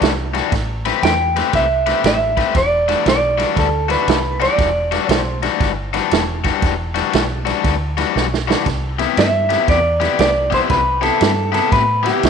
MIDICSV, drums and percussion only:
0, 0, Header, 1, 2, 480
1, 0, Start_track
1, 0, Key_signature, 1, "minor"
1, 0, Tempo, 508906
1, 490, Time_signature, 4, 2, 24, 8
1, 11600, End_track
2, 0, Start_track
2, 0, Title_t, "Drums"
2, 16, Note_on_c, 9, 51, 70
2, 32, Note_on_c, 9, 38, 94
2, 110, Note_off_c, 9, 51, 0
2, 126, Note_off_c, 9, 38, 0
2, 326, Note_on_c, 9, 51, 49
2, 342, Note_on_c, 9, 38, 28
2, 420, Note_off_c, 9, 51, 0
2, 436, Note_off_c, 9, 38, 0
2, 490, Note_on_c, 9, 51, 71
2, 492, Note_on_c, 9, 36, 93
2, 506, Note_on_c, 9, 38, 32
2, 585, Note_off_c, 9, 51, 0
2, 586, Note_off_c, 9, 36, 0
2, 601, Note_off_c, 9, 38, 0
2, 804, Note_on_c, 9, 51, 53
2, 820, Note_on_c, 9, 38, 32
2, 899, Note_off_c, 9, 51, 0
2, 915, Note_off_c, 9, 38, 0
2, 973, Note_on_c, 9, 51, 70
2, 989, Note_on_c, 9, 38, 93
2, 1067, Note_off_c, 9, 51, 0
2, 1083, Note_off_c, 9, 38, 0
2, 1287, Note_on_c, 9, 51, 57
2, 1303, Note_on_c, 9, 38, 32
2, 1381, Note_off_c, 9, 51, 0
2, 1397, Note_off_c, 9, 38, 0
2, 1445, Note_on_c, 9, 51, 73
2, 1447, Note_on_c, 9, 36, 96
2, 1461, Note_on_c, 9, 38, 30
2, 1539, Note_off_c, 9, 51, 0
2, 1542, Note_off_c, 9, 36, 0
2, 1555, Note_off_c, 9, 38, 0
2, 1758, Note_on_c, 9, 51, 57
2, 1774, Note_on_c, 9, 38, 31
2, 1853, Note_off_c, 9, 51, 0
2, 1869, Note_off_c, 9, 38, 0
2, 1925, Note_on_c, 9, 51, 80
2, 1941, Note_on_c, 9, 38, 95
2, 2019, Note_off_c, 9, 51, 0
2, 2035, Note_off_c, 9, 38, 0
2, 2237, Note_on_c, 9, 36, 67
2, 2237, Note_on_c, 9, 51, 53
2, 2253, Note_on_c, 9, 38, 29
2, 2331, Note_off_c, 9, 36, 0
2, 2331, Note_off_c, 9, 51, 0
2, 2347, Note_off_c, 9, 38, 0
2, 2401, Note_on_c, 9, 51, 73
2, 2404, Note_on_c, 9, 36, 96
2, 2417, Note_on_c, 9, 38, 31
2, 2495, Note_off_c, 9, 51, 0
2, 2498, Note_off_c, 9, 36, 0
2, 2511, Note_off_c, 9, 38, 0
2, 2720, Note_on_c, 9, 51, 57
2, 2736, Note_on_c, 9, 38, 29
2, 2815, Note_off_c, 9, 51, 0
2, 2831, Note_off_c, 9, 38, 0
2, 2886, Note_on_c, 9, 51, 72
2, 2902, Note_on_c, 9, 38, 97
2, 2980, Note_off_c, 9, 51, 0
2, 2996, Note_off_c, 9, 38, 0
2, 3202, Note_on_c, 9, 51, 59
2, 3218, Note_on_c, 9, 38, 31
2, 3296, Note_off_c, 9, 51, 0
2, 3312, Note_off_c, 9, 38, 0
2, 3363, Note_on_c, 9, 36, 98
2, 3365, Note_on_c, 9, 51, 77
2, 3381, Note_on_c, 9, 38, 29
2, 3457, Note_off_c, 9, 36, 0
2, 3459, Note_off_c, 9, 51, 0
2, 3475, Note_off_c, 9, 38, 0
2, 3677, Note_on_c, 9, 51, 60
2, 3693, Note_on_c, 9, 38, 31
2, 3771, Note_off_c, 9, 51, 0
2, 3788, Note_off_c, 9, 38, 0
2, 3846, Note_on_c, 9, 51, 75
2, 3862, Note_on_c, 9, 38, 99
2, 3940, Note_off_c, 9, 51, 0
2, 3956, Note_off_c, 9, 38, 0
2, 4162, Note_on_c, 9, 51, 49
2, 4178, Note_on_c, 9, 38, 31
2, 4257, Note_off_c, 9, 51, 0
2, 4273, Note_off_c, 9, 38, 0
2, 4323, Note_on_c, 9, 36, 97
2, 4324, Note_on_c, 9, 51, 69
2, 4340, Note_on_c, 9, 38, 30
2, 4418, Note_off_c, 9, 36, 0
2, 4418, Note_off_c, 9, 51, 0
2, 4434, Note_off_c, 9, 38, 0
2, 4638, Note_on_c, 9, 51, 51
2, 4654, Note_on_c, 9, 38, 31
2, 4732, Note_off_c, 9, 51, 0
2, 4748, Note_off_c, 9, 38, 0
2, 4802, Note_on_c, 9, 51, 70
2, 4818, Note_on_c, 9, 38, 99
2, 4896, Note_off_c, 9, 51, 0
2, 4912, Note_off_c, 9, 38, 0
2, 5118, Note_on_c, 9, 51, 53
2, 5134, Note_on_c, 9, 38, 32
2, 5212, Note_off_c, 9, 51, 0
2, 5228, Note_off_c, 9, 38, 0
2, 5285, Note_on_c, 9, 36, 93
2, 5286, Note_on_c, 9, 51, 67
2, 5302, Note_on_c, 9, 38, 30
2, 5380, Note_off_c, 9, 36, 0
2, 5380, Note_off_c, 9, 51, 0
2, 5396, Note_off_c, 9, 38, 0
2, 5600, Note_on_c, 9, 51, 56
2, 5616, Note_on_c, 9, 38, 33
2, 5694, Note_off_c, 9, 51, 0
2, 5710, Note_off_c, 9, 38, 0
2, 5766, Note_on_c, 9, 51, 74
2, 5782, Note_on_c, 9, 38, 98
2, 5861, Note_off_c, 9, 51, 0
2, 5877, Note_off_c, 9, 38, 0
2, 6077, Note_on_c, 9, 51, 54
2, 6079, Note_on_c, 9, 36, 66
2, 6093, Note_on_c, 9, 38, 30
2, 6171, Note_off_c, 9, 51, 0
2, 6173, Note_off_c, 9, 36, 0
2, 6187, Note_off_c, 9, 38, 0
2, 6245, Note_on_c, 9, 51, 76
2, 6247, Note_on_c, 9, 36, 101
2, 6261, Note_on_c, 9, 38, 30
2, 6339, Note_off_c, 9, 51, 0
2, 6342, Note_off_c, 9, 36, 0
2, 6355, Note_off_c, 9, 38, 0
2, 6559, Note_on_c, 9, 51, 58
2, 6575, Note_on_c, 9, 38, 29
2, 6653, Note_off_c, 9, 51, 0
2, 6669, Note_off_c, 9, 38, 0
2, 6727, Note_on_c, 9, 51, 74
2, 6743, Note_on_c, 9, 38, 97
2, 6821, Note_off_c, 9, 51, 0
2, 6837, Note_off_c, 9, 38, 0
2, 7042, Note_on_c, 9, 51, 59
2, 7058, Note_on_c, 9, 38, 30
2, 7136, Note_off_c, 9, 51, 0
2, 7152, Note_off_c, 9, 38, 0
2, 7209, Note_on_c, 9, 51, 75
2, 7210, Note_on_c, 9, 36, 98
2, 7225, Note_on_c, 9, 38, 28
2, 7303, Note_off_c, 9, 51, 0
2, 7304, Note_off_c, 9, 36, 0
2, 7319, Note_off_c, 9, 38, 0
2, 7524, Note_on_c, 9, 51, 58
2, 7540, Note_on_c, 9, 38, 32
2, 7618, Note_off_c, 9, 51, 0
2, 7634, Note_off_c, 9, 38, 0
2, 7704, Note_on_c, 9, 38, 55
2, 7799, Note_off_c, 9, 38, 0
2, 7864, Note_on_c, 9, 38, 59
2, 7959, Note_off_c, 9, 38, 0
2, 8020, Note_on_c, 9, 38, 83
2, 8114, Note_off_c, 9, 38, 0
2, 8167, Note_on_c, 9, 51, 74
2, 8169, Note_on_c, 9, 36, 92
2, 8183, Note_on_c, 9, 38, 32
2, 8262, Note_off_c, 9, 51, 0
2, 8263, Note_off_c, 9, 36, 0
2, 8278, Note_off_c, 9, 38, 0
2, 8481, Note_on_c, 9, 51, 54
2, 8497, Note_on_c, 9, 38, 28
2, 8575, Note_off_c, 9, 51, 0
2, 8591, Note_off_c, 9, 38, 0
2, 8651, Note_on_c, 9, 51, 69
2, 8667, Note_on_c, 9, 38, 97
2, 8745, Note_off_c, 9, 51, 0
2, 8761, Note_off_c, 9, 38, 0
2, 8962, Note_on_c, 9, 51, 57
2, 8978, Note_on_c, 9, 38, 33
2, 9056, Note_off_c, 9, 51, 0
2, 9072, Note_off_c, 9, 38, 0
2, 9130, Note_on_c, 9, 51, 66
2, 9131, Note_on_c, 9, 36, 98
2, 9146, Note_on_c, 9, 38, 29
2, 9224, Note_off_c, 9, 51, 0
2, 9225, Note_off_c, 9, 36, 0
2, 9240, Note_off_c, 9, 38, 0
2, 9443, Note_on_c, 9, 51, 52
2, 9459, Note_on_c, 9, 38, 32
2, 9538, Note_off_c, 9, 51, 0
2, 9554, Note_off_c, 9, 38, 0
2, 9609, Note_on_c, 9, 51, 69
2, 9625, Note_on_c, 9, 38, 106
2, 9703, Note_off_c, 9, 51, 0
2, 9719, Note_off_c, 9, 38, 0
2, 9923, Note_on_c, 9, 36, 69
2, 9923, Note_on_c, 9, 51, 53
2, 9939, Note_on_c, 9, 38, 30
2, 10017, Note_off_c, 9, 51, 0
2, 10018, Note_off_c, 9, 36, 0
2, 10033, Note_off_c, 9, 38, 0
2, 10088, Note_on_c, 9, 51, 73
2, 10091, Note_on_c, 9, 36, 99
2, 10104, Note_on_c, 9, 38, 32
2, 10183, Note_off_c, 9, 51, 0
2, 10185, Note_off_c, 9, 36, 0
2, 10199, Note_off_c, 9, 38, 0
2, 10400, Note_on_c, 9, 51, 54
2, 10417, Note_on_c, 9, 38, 31
2, 10495, Note_off_c, 9, 51, 0
2, 10511, Note_off_c, 9, 38, 0
2, 10570, Note_on_c, 9, 51, 78
2, 10586, Note_on_c, 9, 38, 98
2, 10664, Note_off_c, 9, 51, 0
2, 10680, Note_off_c, 9, 38, 0
2, 10885, Note_on_c, 9, 51, 60
2, 10902, Note_on_c, 9, 38, 31
2, 10980, Note_off_c, 9, 51, 0
2, 10996, Note_off_c, 9, 38, 0
2, 11053, Note_on_c, 9, 36, 95
2, 11055, Note_on_c, 9, 51, 74
2, 11071, Note_on_c, 9, 38, 30
2, 11148, Note_off_c, 9, 36, 0
2, 11149, Note_off_c, 9, 51, 0
2, 11165, Note_off_c, 9, 38, 0
2, 11370, Note_on_c, 9, 51, 60
2, 11386, Note_on_c, 9, 38, 32
2, 11465, Note_off_c, 9, 51, 0
2, 11481, Note_off_c, 9, 38, 0
2, 11536, Note_on_c, 9, 51, 78
2, 11552, Note_on_c, 9, 38, 101
2, 11600, Note_off_c, 9, 38, 0
2, 11600, Note_off_c, 9, 51, 0
2, 11600, End_track
0, 0, End_of_file